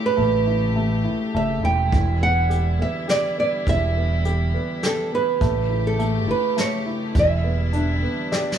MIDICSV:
0, 0, Header, 1, 6, 480
1, 0, Start_track
1, 0, Tempo, 581395
1, 146, Time_signature, 3, 2, 24, 8
1, 7084, End_track
2, 0, Start_track
2, 0, Title_t, "Nylon-string guitar"
2, 0, Program_c, 0, 24
2, 48, Note_on_c, 0, 71, 85
2, 964, Note_off_c, 0, 71, 0
2, 1127, Note_on_c, 0, 76, 88
2, 1357, Note_off_c, 0, 76, 0
2, 1360, Note_on_c, 0, 79, 89
2, 1802, Note_off_c, 0, 79, 0
2, 1840, Note_on_c, 0, 78, 91
2, 2325, Note_off_c, 0, 78, 0
2, 2328, Note_on_c, 0, 76, 88
2, 2557, Note_off_c, 0, 76, 0
2, 2560, Note_on_c, 0, 74, 85
2, 2795, Note_off_c, 0, 74, 0
2, 2805, Note_on_c, 0, 74, 78
2, 3043, Note_off_c, 0, 74, 0
2, 3049, Note_on_c, 0, 76, 101
2, 4010, Note_off_c, 0, 76, 0
2, 4013, Note_on_c, 0, 69, 75
2, 4246, Note_off_c, 0, 69, 0
2, 4250, Note_on_c, 0, 71, 87
2, 4803, Note_off_c, 0, 71, 0
2, 4846, Note_on_c, 0, 69, 79
2, 5203, Note_off_c, 0, 69, 0
2, 5207, Note_on_c, 0, 71, 80
2, 5441, Note_off_c, 0, 71, 0
2, 5451, Note_on_c, 0, 73, 85
2, 5884, Note_off_c, 0, 73, 0
2, 5938, Note_on_c, 0, 76, 80
2, 6850, Note_off_c, 0, 76, 0
2, 7084, End_track
3, 0, Start_track
3, 0, Title_t, "Upright piano"
3, 0, Program_c, 1, 0
3, 0, Control_c, 1, 64, 127
3, 0, Note_on_c, 1, 57, 51
3, 0, Note_on_c, 1, 64, 50
3, 126, Note_off_c, 1, 57, 0
3, 138, Note_on_c, 1, 57, 60
3, 371, Note_off_c, 1, 64, 0
3, 384, Note_on_c, 1, 64, 52
3, 613, Note_off_c, 1, 57, 0
3, 626, Note_on_c, 1, 57, 51
3, 848, Note_off_c, 1, 64, 0
3, 861, Note_on_c, 1, 64, 49
3, 1098, Note_off_c, 1, 57, 0
3, 1110, Note_on_c, 1, 57, 52
3, 1333, Note_off_c, 1, 64, 0
3, 1345, Note_on_c, 1, 64, 47
3, 1575, Note_off_c, 1, 57, 0
3, 1580, Note_off_c, 1, 64, 0
3, 1585, Note_on_c, 1, 52, 59
3, 1598, Control_c, 1, 64, 0
3, 1763, Control_c, 1, 64, 127
3, 1826, Note_on_c, 1, 59, 51
3, 2062, Note_on_c, 1, 67, 53
3, 2290, Note_off_c, 1, 59, 0
3, 2303, Note_on_c, 1, 59, 48
3, 2529, Note_off_c, 1, 67, 0
3, 2541, Note_on_c, 1, 67, 51
3, 2776, Note_off_c, 1, 59, 0
3, 2789, Note_on_c, 1, 59, 51
3, 2993, Note_off_c, 1, 52, 0
3, 3030, Note_on_c, 1, 52, 63
3, 3261, Note_off_c, 1, 59, 0
3, 3273, Note_on_c, 1, 59, 48
3, 3474, Note_off_c, 1, 67, 0
3, 3511, Note_on_c, 1, 67, 56
3, 3738, Note_off_c, 1, 59, 0
3, 3750, Note_on_c, 1, 59, 53
3, 3976, Note_off_c, 1, 67, 0
3, 3988, Note_on_c, 1, 67, 54
3, 4214, Note_off_c, 1, 59, 0
3, 4226, Note_on_c, 1, 59, 50
3, 4433, Note_off_c, 1, 52, 0
3, 4451, Note_off_c, 1, 67, 0
3, 4458, Note_off_c, 1, 59, 0
3, 4468, Note_on_c, 1, 57, 65
3, 4475, Control_c, 1, 64, 0
3, 4618, Control_c, 1, 64, 127
3, 4700, Note_on_c, 1, 64, 51
3, 4932, Note_off_c, 1, 57, 0
3, 4945, Note_on_c, 1, 57, 58
3, 5166, Note_off_c, 1, 64, 0
3, 5179, Note_on_c, 1, 64, 52
3, 5408, Note_off_c, 1, 57, 0
3, 5421, Note_on_c, 1, 57, 58
3, 5651, Note_off_c, 1, 64, 0
3, 5663, Note_on_c, 1, 64, 51
3, 5887, Note_off_c, 1, 57, 0
3, 5895, Note_on_c, 1, 52, 60
3, 5896, Note_off_c, 1, 64, 0
3, 5914, Control_c, 1, 64, 0
3, 6057, Control_c, 1, 64, 127
3, 6144, Note_on_c, 1, 59, 51
3, 6381, Note_on_c, 1, 62, 53
3, 6613, Note_off_c, 1, 59, 0
3, 6625, Note_on_c, 1, 59, 50
3, 6866, Note_on_c, 1, 74, 65
3, 6868, Note_on_c, 1, 67, 51
3, 7084, Note_off_c, 1, 52, 0
3, 7084, Note_off_c, 1, 59, 0
3, 7084, Note_off_c, 1, 62, 0
3, 7084, Note_off_c, 1, 67, 0
3, 7084, Note_off_c, 1, 74, 0
3, 7084, End_track
4, 0, Start_track
4, 0, Title_t, "String section"
4, 0, Program_c, 2, 48
4, 0, Note_on_c, 2, 49, 60
4, 0, Note_on_c, 2, 57, 62
4, 0, Note_on_c, 2, 67, 70
4, 1560, Note_off_c, 2, 49, 0
4, 1562, Note_off_c, 2, 67, 0
4, 1563, Note_off_c, 2, 57, 0
4, 1582, Note_on_c, 2, 50, 60
4, 1589, Note_on_c, 2, 55, 53
4, 1590, Note_on_c, 2, 64, 66
4, 4433, Note_off_c, 2, 50, 0
4, 4437, Note_off_c, 2, 55, 0
4, 4437, Note_off_c, 2, 64, 0
4, 4472, Note_on_c, 2, 49, 66
4, 4476, Note_on_c, 2, 57, 59
4, 4476, Note_on_c, 2, 67, 70
4, 5892, Note_off_c, 2, 49, 0
4, 5894, Note_off_c, 2, 57, 0
4, 5894, Note_off_c, 2, 67, 0
4, 5898, Note_on_c, 2, 50, 63
4, 5898, Note_on_c, 2, 64, 71
4, 5899, Note_on_c, 2, 55, 62
4, 7084, Note_off_c, 2, 50, 0
4, 7084, Note_off_c, 2, 55, 0
4, 7084, Note_off_c, 2, 64, 0
4, 7084, End_track
5, 0, Start_track
5, 0, Title_t, "Fretless electric bass"
5, 0, Program_c, 3, 35
5, 148, Note_on_c, 3, 33, 83
5, 869, Note_off_c, 3, 33, 0
5, 1109, Note_on_c, 3, 30, 73
5, 1324, Note_off_c, 3, 30, 0
5, 1343, Note_on_c, 3, 28, 77
5, 1561, Note_off_c, 3, 28, 0
5, 1591, Note_on_c, 3, 28, 84
5, 2312, Note_off_c, 3, 28, 0
5, 3027, Note_on_c, 3, 28, 89
5, 3748, Note_off_c, 3, 28, 0
5, 4466, Note_on_c, 3, 33, 85
5, 5186, Note_off_c, 3, 33, 0
5, 5903, Note_on_c, 3, 28, 90
5, 6627, Note_off_c, 3, 28, 0
5, 7084, End_track
6, 0, Start_track
6, 0, Title_t, "Drums"
6, 1589, Note_on_c, 9, 36, 88
6, 1589, Note_on_c, 9, 42, 49
6, 1672, Note_off_c, 9, 36, 0
6, 1672, Note_off_c, 9, 42, 0
6, 2067, Note_on_c, 9, 42, 52
6, 2150, Note_off_c, 9, 42, 0
6, 2548, Note_on_c, 9, 42, 50
6, 2553, Note_on_c, 9, 38, 67
6, 2631, Note_off_c, 9, 42, 0
6, 2635, Note_off_c, 9, 38, 0
6, 3028, Note_on_c, 9, 36, 87
6, 3030, Note_on_c, 9, 42, 53
6, 3111, Note_off_c, 9, 36, 0
6, 3113, Note_off_c, 9, 42, 0
6, 3507, Note_on_c, 9, 42, 52
6, 3590, Note_off_c, 9, 42, 0
6, 3985, Note_on_c, 9, 42, 47
6, 3989, Note_on_c, 9, 38, 67
6, 4067, Note_off_c, 9, 42, 0
6, 4071, Note_off_c, 9, 38, 0
6, 4467, Note_on_c, 9, 36, 92
6, 4469, Note_on_c, 9, 42, 45
6, 4550, Note_off_c, 9, 36, 0
6, 4551, Note_off_c, 9, 42, 0
6, 4947, Note_on_c, 9, 42, 50
6, 5030, Note_off_c, 9, 42, 0
6, 5426, Note_on_c, 9, 42, 47
6, 5430, Note_on_c, 9, 38, 65
6, 5509, Note_off_c, 9, 42, 0
6, 5513, Note_off_c, 9, 38, 0
6, 5901, Note_on_c, 9, 42, 49
6, 5903, Note_on_c, 9, 36, 87
6, 5983, Note_off_c, 9, 42, 0
6, 5986, Note_off_c, 9, 36, 0
6, 6382, Note_on_c, 9, 42, 50
6, 6464, Note_off_c, 9, 42, 0
6, 6871, Note_on_c, 9, 38, 46
6, 6953, Note_off_c, 9, 38, 0
6, 7034, Note_on_c, 9, 38, 53
6, 7084, Note_off_c, 9, 38, 0
6, 7084, End_track
0, 0, End_of_file